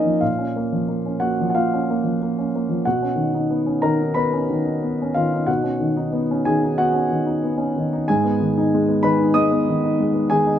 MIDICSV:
0, 0, Header, 1, 2, 480
1, 0, Start_track
1, 0, Tempo, 659341
1, 153, Time_signature, 4, 2, 24, 8
1, 3513, Tempo, 644468
1, 7806, End_track
2, 0, Start_track
2, 0, Title_t, "Grand piano"
2, 0, Program_c, 0, 0
2, 0, Control_c, 0, 64, 127
2, 0, Note_on_c, 0, 53, 27
2, 0, Note_on_c, 0, 58, 28
2, 0, Note_on_c, 0, 61, 28
2, 0, Note_on_c, 0, 63, 40
2, 0, Note_on_c, 0, 68, 41
2, 0, Note_on_c, 0, 70, 38
2, 0, Note_on_c, 0, 75, 53
2, 0, Note_on_c, 0, 80, 57
2, 0, Note_on_c, 0, 82, 53
2, 40, Note_off_c, 0, 53, 0
2, 40, Note_on_c, 0, 53, 26
2, 110, Note_off_c, 0, 58, 0
2, 142, Note_off_c, 0, 63, 0
2, 151, Note_on_c, 0, 77, 47
2, 152, Note_off_c, 0, 75, 0
2, 155, Note_on_c, 0, 65, 34
2, 160, Note_on_c, 0, 46, 34
2, 167, Control_c, 0, 64, 0
2, 169, Note_off_c, 0, 70, 0
2, 170, Note_off_c, 0, 61, 0
2, 170, Note_off_c, 0, 68, 0
2, 173, Note_off_c, 0, 82, 0
2, 174, Note_off_c, 0, 80, 0
2, 228, Note_off_c, 0, 53, 0
2, 280, Note_on_c, 0, 61, 28
2, 312, Control_c, 0, 64, 127
2, 409, Note_on_c, 0, 58, 29
2, 468, Note_off_c, 0, 61, 0
2, 528, Note_on_c, 0, 53, 29
2, 593, Note_off_c, 0, 58, 0
2, 643, Note_on_c, 0, 58, 28
2, 712, Note_off_c, 0, 53, 0
2, 771, Note_on_c, 0, 61, 28
2, 829, Note_off_c, 0, 58, 0
2, 844, Note_off_c, 0, 65, 0
2, 871, Note_off_c, 0, 77, 0
2, 872, Note_on_c, 0, 78, 57
2, 874, Note_on_c, 0, 58, 29
2, 883, Note_on_c, 0, 66, 41
2, 953, Note_off_c, 0, 61, 0
2, 1021, Note_on_c, 0, 53, 30
2, 1053, Note_off_c, 0, 66, 0
2, 1061, Note_off_c, 0, 78, 0
2, 1064, Note_off_c, 0, 58, 0
2, 1086, Note_off_c, 0, 46, 0
2, 1091, Note_on_c, 0, 78, 41
2, 1126, Note_on_c, 0, 77, 56
2, 1127, Note_off_c, 0, 78, 0
2, 1127, Note_on_c, 0, 58, 32
2, 1134, Note_on_c, 0, 65, 40
2, 1198, Note_off_c, 0, 53, 0
2, 1264, Note_on_c, 0, 61, 28
2, 1312, Note_off_c, 0, 58, 0
2, 1384, Note_on_c, 0, 58, 31
2, 1441, Note_off_c, 0, 61, 0
2, 1484, Note_on_c, 0, 53, 28
2, 1562, Note_off_c, 0, 58, 0
2, 1617, Note_on_c, 0, 58, 29
2, 1673, Note_off_c, 0, 53, 0
2, 1735, Note_on_c, 0, 61, 30
2, 1799, Note_off_c, 0, 58, 0
2, 1819, Note_off_c, 0, 65, 0
2, 1844, Note_off_c, 0, 77, 0
2, 1860, Note_on_c, 0, 58, 30
2, 1919, Note_off_c, 0, 61, 0
2, 1959, Note_on_c, 0, 53, 28
2, 2041, Note_off_c, 0, 58, 0
2, 2078, Note_off_c, 0, 53, 0
2, 2078, Note_on_c, 0, 78, 57
2, 2088, Control_c, 0, 64, 0
2, 2089, Note_on_c, 0, 47, 35
2, 2094, Note_on_c, 0, 66, 41
2, 2201, Note_on_c, 0, 61, 29
2, 2205, Control_c, 0, 64, 127
2, 2297, Note_on_c, 0, 51, 32
2, 2390, Note_off_c, 0, 61, 0
2, 2434, Note_on_c, 0, 63, 30
2, 2498, Note_off_c, 0, 51, 0
2, 2550, Note_on_c, 0, 59, 31
2, 2626, Note_off_c, 0, 63, 0
2, 2668, Note_on_c, 0, 61, 32
2, 2744, Note_off_c, 0, 59, 0
2, 2774, Note_off_c, 0, 66, 0
2, 2781, Note_on_c, 0, 82, 59
2, 2787, Note_on_c, 0, 70, 48
2, 2795, Note_off_c, 0, 78, 0
2, 2795, Note_on_c, 0, 51, 33
2, 2862, Note_off_c, 0, 61, 0
2, 2919, Note_on_c, 0, 63, 34
2, 2986, Note_off_c, 0, 51, 0
2, 3011, Note_off_c, 0, 47, 0
2, 3013, Note_off_c, 0, 70, 0
2, 3017, Note_on_c, 0, 83, 60
2, 3027, Note_off_c, 0, 82, 0
2, 3028, Note_on_c, 0, 59, 32
2, 3029, Note_on_c, 0, 71, 43
2, 3108, Note_off_c, 0, 63, 0
2, 3154, Note_on_c, 0, 61, 33
2, 3223, Note_off_c, 0, 59, 0
2, 3276, Note_on_c, 0, 51, 33
2, 3346, Note_off_c, 0, 61, 0
2, 3386, Note_on_c, 0, 63, 32
2, 3466, Note_off_c, 0, 51, 0
2, 3514, Note_on_c, 0, 59, 32
2, 3582, Note_off_c, 0, 63, 0
2, 3657, Note_on_c, 0, 61, 34
2, 3708, Note_off_c, 0, 59, 0
2, 3723, Note_off_c, 0, 71, 0
2, 3747, Note_off_c, 0, 83, 0
2, 3751, Note_on_c, 0, 77, 58
2, 3765, Note_on_c, 0, 51, 34
2, 3766, Note_on_c, 0, 65, 45
2, 3840, Note_off_c, 0, 61, 0
2, 3890, Note_on_c, 0, 63, 35
2, 3954, Note_off_c, 0, 51, 0
2, 3987, Note_off_c, 0, 65, 0
2, 3989, Note_on_c, 0, 78, 56
2, 3995, Note_off_c, 0, 77, 0
2, 3996, Note_on_c, 0, 47, 39
2, 4000, Note_on_c, 0, 66, 40
2, 4011, Control_c, 0, 64, 0
2, 4077, Note_off_c, 0, 63, 0
2, 4114, Control_c, 0, 64, 127
2, 4117, Note_on_c, 0, 61, 32
2, 4242, Note_on_c, 0, 51, 34
2, 4311, Note_off_c, 0, 61, 0
2, 4362, Note_on_c, 0, 63, 36
2, 4433, Note_off_c, 0, 51, 0
2, 4481, Note_on_c, 0, 59, 36
2, 4553, Note_off_c, 0, 63, 0
2, 4619, Note_on_c, 0, 61, 33
2, 4672, Note_off_c, 0, 59, 0
2, 4691, Note_off_c, 0, 66, 0
2, 4715, Note_off_c, 0, 78, 0
2, 4725, Note_on_c, 0, 80, 67
2, 4733, Note_on_c, 0, 51, 35
2, 4736, Note_on_c, 0, 68, 48
2, 4801, Note_off_c, 0, 61, 0
2, 4859, Note_on_c, 0, 63, 37
2, 4918, Note_off_c, 0, 51, 0
2, 4929, Note_off_c, 0, 47, 0
2, 4951, Note_off_c, 0, 68, 0
2, 4962, Note_off_c, 0, 80, 0
2, 4968, Note_on_c, 0, 78, 66
2, 4972, Note_on_c, 0, 66, 50
2, 4976, Note_on_c, 0, 59, 36
2, 5041, Note_off_c, 0, 63, 0
2, 5081, Note_on_c, 0, 61, 34
2, 5159, Note_off_c, 0, 59, 0
2, 5212, Note_on_c, 0, 51, 36
2, 5272, Note_off_c, 0, 61, 0
2, 5327, Note_on_c, 0, 63, 36
2, 5397, Note_off_c, 0, 51, 0
2, 5456, Note_on_c, 0, 59, 34
2, 5515, Note_off_c, 0, 63, 0
2, 5562, Note_on_c, 0, 61, 37
2, 5640, Note_off_c, 0, 59, 0
2, 5657, Note_off_c, 0, 66, 0
2, 5685, Note_off_c, 0, 78, 0
2, 5702, Note_on_c, 0, 51, 37
2, 5754, Note_off_c, 0, 61, 0
2, 5825, Note_on_c, 0, 63, 37
2, 5884, Note_off_c, 0, 51, 0
2, 5933, Note_off_c, 0, 63, 0
2, 5935, Control_c, 0, 64, 0
2, 5937, Note_on_c, 0, 80, 73
2, 5943, Note_on_c, 0, 68, 54
2, 5950, Note_on_c, 0, 44, 47
2, 6057, Note_on_c, 0, 59, 34
2, 6058, Control_c, 0, 64, 127
2, 6176, Note_on_c, 0, 51, 37
2, 6240, Note_off_c, 0, 59, 0
2, 6307, Note_on_c, 0, 63, 37
2, 6358, Note_off_c, 0, 51, 0
2, 6430, Note_on_c, 0, 56, 38
2, 6482, Note_off_c, 0, 63, 0
2, 6534, Note_on_c, 0, 59, 36
2, 6603, Note_off_c, 0, 56, 0
2, 6615, Note_off_c, 0, 68, 0
2, 6641, Note_off_c, 0, 80, 0
2, 6643, Note_on_c, 0, 83, 70
2, 6649, Note_on_c, 0, 51, 37
2, 6654, Note_on_c, 0, 71, 55
2, 6714, Note_off_c, 0, 59, 0
2, 6768, Note_on_c, 0, 63, 40
2, 6832, Note_off_c, 0, 51, 0
2, 6858, Note_off_c, 0, 44, 0
2, 6866, Note_off_c, 0, 71, 0
2, 6876, Note_off_c, 0, 83, 0
2, 6876, Note_on_c, 0, 87, 80
2, 6885, Note_on_c, 0, 75, 62
2, 6886, Note_on_c, 0, 56, 38
2, 6951, Note_off_c, 0, 63, 0
2, 7004, Note_on_c, 0, 59, 38
2, 7071, Note_off_c, 0, 56, 0
2, 7133, Note_on_c, 0, 51, 37
2, 7190, Note_off_c, 0, 59, 0
2, 7249, Note_on_c, 0, 63, 35
2, 7315, Note_off_c, 0, 51, 0
2, 7362, Note_on_c, 0, 56, 36
2, 7433, Note_off_c, 0, 63, 0
2, 7466, Note_on_c, 0, 59, 37
2, 7550, Note_off_c, 0, 56, 0
2, 7570, Note_off_c, 0, 75, 0
2, 7588, Note_on_c, 0, 80, 74
2, 7595, Note_off_c, 0, 87, 0
2, 7595, Note_on_c, 0, 68, 54
2, 7598, Note_on_c, 0, 51, 39
2, 7662, Note_off_c, 0, 59, 0
2, 7713, Note_on_c, 0, 63, 39
2, 7788, Note_off_c, 0, 51, 0
2, 7806, Note_off_c, 0, 63, 0
2, 7806, Note_off_c, 0, 68, 0
2, 7806, Note_off_c, 0, 80, 0
2, 7806, End_track
0, 0, End_of_file